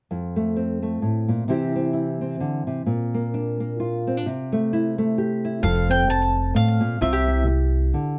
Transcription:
0.11 F2
0.36 A3
0.56 C4
0.82 A3
1.02 A2
1.28 A#2
1.48 C3 E3 C4 E4 G4
1.76 C4
1.93 E4
2.21 C4
2.40 D3
2.67 C3
2.86 A#2
3.14 A#3
3.34 D4
3.60 A#3
3.80 F4
4.07 C4
4.17 D4
4.26 C3
4.53 A3
4.73 E4
4.98 A3
5.18 G4
5.45 E4
5.62 F1 F2 A4 F5
5.89 C4 G5
6.08 A5, muted nylon-string guitar stroke
6.54 A2 F5
6.80 A#2
7.01 C2 C3 F4 E5
7.13 G4
7.28 E4
7.47 muted nylon-string guitar stroke
7.94 D3

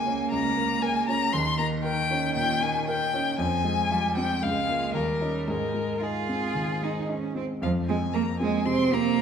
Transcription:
Already playing: C#2 A#3 A#4 G#5
0.06 C#4
0.31 C#2 A#5
0.57 A#3
0.82 A#4 G#5
1.08 C#4 A#5
1.33 D#2 D#3 C6
1.58 A#3 A#5
1.83 A#4 G5
2.10 C#4
2.35 A#2 G5
2.62 A#3 G#5
2.88 A#4 G5
3.14 C#4
3.38 F2 F3 G#5
3.64 G#3
3.91 G3 F4
4.16 C4 G5
4.42 C#2 G#3 F5
4.69 A#3 F4
4.94 D#2 G3 A#4
5.21 C#4 D#4
5.48 G#2 G#3 A#4
5.74 G#3
6.01 D#4 F4 G#4
6.29 C4
6.55 D#3
6.82 G#3 D#4
7.08 C#4 D#4
7.35 C4
7.62 F2 F3 F5
7.88 G#3 C4 G#5
8.14 A#3 A#5
8.40 G#3 C4 G#5
8.66 C3 C4 C6
8.91 A#3 C4 A#5
9.18 A#3

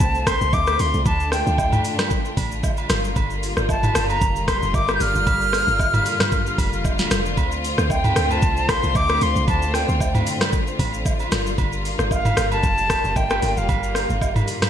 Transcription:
Already playing: D3 A3 C4 F4 A5
0.00 C2, kick, shaker
0.15 shaker
0.27 C6, kick, cross-stick, open hi-hat, high agogo, shaker
0.41 C2, shaker
0.53 D2 D6, kick, low woodblock, shaker
0.67 cross-stick, high agogo, shaker
0.79 D2 C6, open hi-hat, shaker
0.94 C2, shaker
1.06 D2 D4 A5, kick, high agogo, shaker
1.20 shaker
1.32 G5, cross-stick, open hi-hat, shaker
1.47 D2, shaker
1.58 kick, low woodblock, shaker
1.72 mid tom, high agogo, shaker
1.85 open hi-hat, shaker
1.99 cross-stick, snare, high agogo, shaker
2.10 kick, shaker
2.25 shaker
2.37 A1, kick, open hi-hat, high agogo, shaker
2.52 shaker
2.63 kick, low woodblock, shaker
2.77 high agogo, shaker
2.89 G1 G3 A#3, cross-stick, snare, open hi-hat, shaker
3.04 shaker
3.16 G1, kick, high agogo, shaker
3.30 shaker
3.43 open hi-hat, shaker
3.57 G1, cross-stick, shaker
3.69 A5, kick, low woodblock, shaker
3.83 mid tom, high agogo, shaker
3.95 G1, cross-stick, open hi-hat, shaker
4.10 A#5, high agogo, shaker
4.21 F1, kick, shaker
4.36 shaker
4.48 C6, kick, cross-stick, open hi-hat, high agogo, shaker
4.62 F1, shaker
4.74 G1 D6, kick, low woodblock, shaker
4.88 cross-stick, high agogo, shaker
4.95 G6
5.00 G1 F6, open hi-hat, shaker
5.15 F1, shaker
5.27 G1, kick, high agogo, shaker
5.41 shaker
5.53 cross-stick, open hi-hat, shaker
5.67 G1, shaker
5.79 kick, low woodblock, shaker
5.94 mid tom, high agogo, shaker
6.06 open hi-hat, shaker
6.20 cross-stick, snare, mid tom, high agogo, shaker
6.32 kick, shaker
6.46 shaker
6.58 F1, kick, open hi-hat, high agogo, shaker
6.73 shaker
6.85 kick, low woodblock, shaker
6.99 snare, high agogo, shaker
7.11 F1, cross-stick, snare, open hi-hat, shaker
7.26 shaker
7.37 D2 A3 C4, kick, high agogo, shaker
7.52 shaker
7.64 open hi-hat, shaker
7.78 D2, cross-stick, shaker
7.90 G5, kick, low woodblock, shaker
8.04 mid tom, high agogo, shaker
8.16 D2, cross-stick, open hi-hat, shaker
8.31 A5, high agogo, shaker
8.42 C2, kick, shaker
8.57 shaker
8.69 C6, kick, cross-stick, open hi-hat, high agogo, shaker
8.83 C2, shaker
8.95 D2 D6, kick, low woodblock, shaker
9.09 cross-stick, high agogo, shaker
9.21 D2 C6, open hi-hat, shaker
9.36 C2, shaker
9.48 D2 A5, kick, high agogo, shaker
9.62 shaker
9.74 G5, cross-stick, open hi-hat, shaker
9.88 D2, shaker
10.00 kick, low woodblock, shaker
10.15 mid tom, high agogo, shaker
10.27 open hi-hat, shaker
10.41 cross-stick, snare, high agogo, shaker
10.52 kick, shaker
10.67 shaker
10.79 A1, kick, open hi-hat, high agogo, shaker
10.94 shaker
11.06 kick, low woodblock, shaker
11.19 high agogo, shaker
11.32 G1 G3 A#3, cross-stick, snare, open hi-hat, shaker
11.46 shaker
11.58 G1, kick, high agogo, shaker
11.72 shaker
11.85 open hi-hat, shaker
11.99 G1, cross-stick, shaker
12.11 F5, kick, low woodblock, shaker
12.25 mid tom, high agogo, shaker
12.37 G1, cross-stick, open hi-hat, shaker
12.52 A5, high agogo, shaker
12.63 F1, kick, shaker
12.78 shaker
12.90 kick, cross-stick, open hi-hat, high agogo, shaker
13.04 F1, shaker
13.16 G1 G5, kick, low woodblock, shaker
13.30 cross-stick, high agogo, shaker
13.42 G1, open hi-hat, shaker
13.57 F1 F5, shaker
13.69 G1, kick, high agogo, shaker
13.83 shaker
13.95 cross-stick, open hi-hat, shaker
14.10 G1, shaker
14.21 kick, low woodblock, shaker
14.36 mid tom, high agogo, shaker
14.48 open hi-hat, shaker
14.62 cross-stick, snare, mid tom, high agogo, shaker

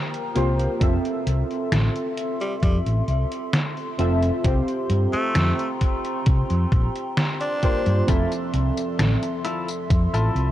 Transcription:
Already playing: A#3 F4 G4 A#4 C5 G5 A#5
0.14 closed hi-hat
0.35 C2 A#3 F4 G4 C5, closed hi-hat
0.59 closed hi-hat
0.80 F1 C4 F4 A4 E5 C6, kick, closed hi-hat
1.05 closed hi-hat
1.27 C2, closed hi-hat
1.51 closed hi-hat
1.72 A1, snare, closed hi-hat
1.96 closed hi-hat
2.17 closed hi-hat
2.41 G3, closed hi-hat
2.62 F2 G3, kick, closed hi-hat
2.86 A1, closed hi-hat
3.08 C2, closed hi-hat
3.32 closed hi-hat
3.54 snare, closed hi-hat
3.77 closed hi-hat
3.98 F1 C4 F4 A4 E5, closed hi-hat
4.23 closed hi-hat
4.44 C2 C4 F4 G4 C5 G5 A#5, kick, closed hi-hat
4.68 closed hi-hat
4.90 G2, closed hi-hat
5.13 A3, muted fingered electric bass stroke, closed hi-hat
5.35 F2, snare, closed hi-hat
5.59 closed hi-hat
5.81 kick, closed hi-hat
6.04 closed hi-hat
6.26 C3, kick, closed hi-hat
6.50 F2, closed hi-hat
6.72 A#1, kick, closed hi-hat
6.96 closed hi-hat
7.17 snare, closed hi-hat
7.41 D4, closed hi-hat
7.62 A#3 F4 G4 C5, kick, closed hi-hat
7.86 G2, closed hi-hat
8.07 F1 F3 C4 E4 F4 A4 E5, kick, closed hi-hat, tambourine
8.31 closed hi-hat, tambourine
8.53 C2, muted clean electric guitar stroke, closed hi-hat
8.77 closed hi-hat, tambourine
8.99 A1, muted clean electric guitar stroke, snare, closed hi-hat, tambourine
9.23 muted clean electric guitar stroke, closed hi-hat, tambourine
9.45 E4 F4 A4, closed hi-hat
9.68 closed hi-hat, tambourine
9.90 F2, muted clean electric guitar stroke, kick, closed hi-hat, tambourine
10.13 A1 E4 F4 A4, closed hi-hat, tambourine
10.35 C2, closed hi-hat

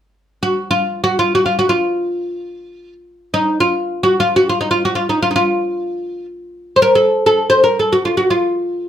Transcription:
0.43 F#4
0.71 F4
1.04 F#4
1.19 F4
1.35 F#4
1.46 F4
1.59 F#4
1.69 F4
3.34 D#4
3.60 F4
4.03 F#4
4.20 F4
4.36 F#4
4.49 F4
4.61 D#4
4.71 F4
4.85 F#4
4.95 F4
5.09 D#4
5.22 F4
5.31 D#4
5.36 F4
6.76 C5
6.82 A#4
6.95 A4
7.26 A4
7.50 C5
7.64 A#4
7.79 A4
7.93 F#4
8.05 F4
8.17 F#4
8.30 F4

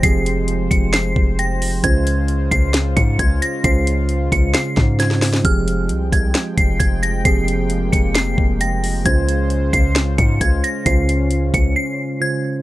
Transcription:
Already playing: F3 G#3 C4 G4 G#4 C5 G5
0.03 F1 F3 C4 G4 G#4 C7, kick, closed hi-hat
0.26 closed hi-hat
0.48 closed hi-hat
0.71 F1 C#7, kick, closed hi-hat
0.93 C7, snare, closed hi-hat
1.16 F1, kick
1.39 G5 A#6, closed hi-hat
1.62 open hi-hat
1.83 C#2 C#3 G#3 C#4 F4 C5 G#6, kick, closed hi-hat
2.07 closed hi-hat
2.28 closed hi-hat
2.51 C#2 C7, kick, closed hi-hat
2.74 snare, closed hi-hat
2.97 G#2 C#7, kick, closed hi-hat
3.19 C#2 G#6, kick, closed hi-hat
3.42 A#6, closed hi-hat
3.63 C#2 C#3 C#4 F4 C5 C7, kick, closed hi-hat
3.87 closed hi-hat
4.09 closed hi-hat
4.32 C#2 C#7, kick, closed hi-hat
4.54 C7, snare, closed hi-hat
4.77 G#2, kick, snare
4.98 C#3 C#4 F4 C5 G#6, snare, closed hi-hat
5.11 snare
5.22 snare, open hi-hat
5.33 snare
5.44 F1 F3 C4 G4 G#4 G5 F6, kick, closed hi-hat
5.68 closed hi-hat
5.89 C2, closed hi-hat
6.12 C2 G#6, kick, closed hi-hat
6.35 snare, closed hi-hat
6.58 F1 C7, kick, closed hi-hat
6.80 F1 G#6, kick, closed hi-hat
7.03 A#6, closed hi-hat
7.24 F1 F3 A#3 C4 G4 G#4 C7, kick, closed hi-hat
7.48 closed hi-hat
7.70 closed hi-hat
7.92 F1 C#7, kick, closed hi-hat
8.15 C7, snare, closed hi-hat
8.38 F1, kick
8.61 G5 A#6, closed hi-hat
8.84 open hi-hat
9.04 C#2 C#3 C#4 F4 C5 G#6, kick, closed hi-hat
9.29 closed hi-hat
9.50 closed hi-hat
9.73 C#2 C7, kick, closed hi-hat
9.96 snare, closed hi-hat
10.18 G#2 C#7, kick, closed hi-hat
10.41 C#2 G#6, kick, closed hi-hat
10.64 A#6, closed hi-hat
10.85 C#2 C#3 C#4 F4 C5 C7, kick, closed hi-hat
11.09 closed hi-hat
11.31 closed hi-hat
11.54 C#2 C#7, kick, closed hi-hat
11.76 C7
12.20 C#3 C#4 F4 C5 G#6

